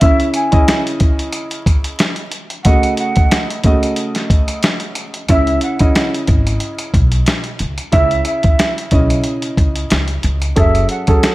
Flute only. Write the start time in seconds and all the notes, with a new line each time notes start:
0.00 E5
0.35 G#5
2.63 F#5
2.98 F#5
5.30 E5
5.63 F#5
7.93 E5
8.25 E5
10.58 E5
10.90 F#5